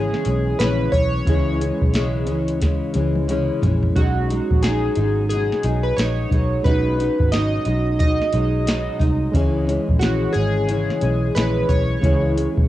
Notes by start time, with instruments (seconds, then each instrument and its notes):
Already playing: picked electric bass G#1, nylon-string guitar C#3 E3 G#3 C#4, reed electric piano G#3 B3 C#4 E4 G#4, synth keys G#4
0.14 snare
0.25 picked electric bass B1, nylon-string guitar E3 G#3 C#4, closed hi-hat
0.59 picked electric bass A#1, nylon-string guitar C#3 E3 G#3 C#4, synth keys B4, snare, closed hi-hat
0.92 picked electric bass B1, nylon-string guitar E3 G#3 C#4, synth keys C#5, kick, closed hi-hat
1.24 picked electric bass C#2, nylon-string guitar C#3 E3 G#3, reed electric piano G#3 C#4 E4, kick, closed hi-hat
1.29 nylon-string guitar C#4, reed electric piano G#4
1.60 nylon-string guitar E3 G#3 C#4, closed hi-hat
1.82 picked electric bass B1, kick
1.93 nylon-string guitar C#3 E3 G#3 C#4, snare, closed hi-hat
2.27 picked electric bass C#2, nylon-string guitar E3 G#3 C#4, closed hi-hat
2.48 closed hi-hat
2.60 nylon-string guitar C#3 E3 G#3 C#4, kick, snare, closed hi-hat
2.94 picked electric bass C#2, nylon-string guitar E3 G#3 C#4, closed hi-hat, high tom
3.16 high tom
3.28 nylon-string guitar C#3 E3 G#3 C#4, closed hi-hat, mid tom
3.62 picked electric bass A#1, nylon-string guitar E3 G#3 C#4, closed hi-hat, floor tom
3.83 floor tom
3.93 picked electric bass B1, nylon-string guitar B2 F#3, reed electric piano G#3 C#4 D#4, synth keys F#4, kick, closed hi-hat
3.97 nylon-string guitar G#3 D#4, reed electric piano F#4
4.29 nylon-string guitar F#3 G#3 D#4, closed hi-hat
4.51 picked electric bass A#1, kick
4.63 nylon-string guitar F#3 G#3 D#4, synth keys G#4, snare, closed hi-hat
4.95 picked electric bass G#1, nylon-string guitar G#3 D#4, closed hi-hat
5.00 nylon-string guitar F#3
5.29 nylon-string guitar B2 F#3 G#3, synth keys G#4, closed hi-hat
5.34 nylon-string guitar D#4
5.52 snare
5.63 picked electric bass B1, nylon-string guitar G#3 D#4, closed hi-hat
5.68 nylon-string guitar F#3
5.83 synth keys B4
5.97 picked electric bass A#1, nylon-string guitar F#3 G#3 D#4, synth keys C#5, snare, closed hi-hat
6.31 picked electric bass B1, nylon-string guitar F#3 G#3 D#4, kick, closed hi-hat
6.63 picked electric bass B1, nylon-string guitar B2 F#3, reed electric piano G#3 C#4 D#4, synth keys B4, kick, closed hi-hat
6.67 nylon-string guitar G#3 D#4, reed electric piano F#4
6.98 nylon-string guitar F#3 G#3 D#4, closed hi-hat
7.20 picked electric bass G#1, kick
7.32 nylon-string guitar B2 F#3 G#3 D#4, synth keys D#5, snare, closed hi-hat
7.65 picked electric bass B1, nylon-string guitar G#3 D#4, closed hi-hat
7.69 nylon-string guitar F#3
7.99 nylon-string guitar B2 F#3 G#3 D#4, synth keys D#5, kick, closed hi-hat
8.22 snare
8.33 picked electric bass B1, nylon-string guitar F#3 G#3 D#4, closed hi-hat
8.66 nylon-string guitar B2 F#3 G#3 D#4, snare, closed hi-hat
8.99 picked electric bass C2, nylon-string guitar F#3 G#3 D#4, kick, closed hi-hat
9.32 picked electric bass C#2, nylon-string guitar C#3 E3 G#3 C#4, reed electric piano G#3 C#4 E4, kick, closed hi-hat
9.37 reed electric piano G#4
9.67 nylon-string guitar E3 G#3 C#4, closed hi-hat
9.89 picked electric bass A#1, kick
9.99 nylon-string guitar C#3 E3 G#3 C#4, synth keys F#4, snare, closed hi-hat
10.33 picked electric bass G#1, nylon-string guitar G#3 C#4, synth keys G#4, closed hi-hat
10.37 nylon-string guitar E3
10.67 nylon-string guitar C#3 E3 G#3 C#4, closed hi-hat
10.90 snare
11.01 picked electric bass B1, nylon-string guitar E3 G#3 C#4, closed hi-hat
11.35 picked electric bass A#1, nylon-string guitar C#3 E3 G#3 C#4, synth keys B4, snare, closed hi-hat
11.68 picked electric bass B1, nylon-string guitar E3 G#3 C#4, synth keys C#5, kick, closed hi-hat
12.01 picked electric bass C#2, nylon-string guitar C#3 E3 G#3 C#4, reed electric piano G#3 C#4 E4, kick, closed hi-hat
12.06 reed electric piano G#4
12.35 nylon-string guitar E3 G#3 C#4, closed hi-hat
12.58 picked electric bass B1, kick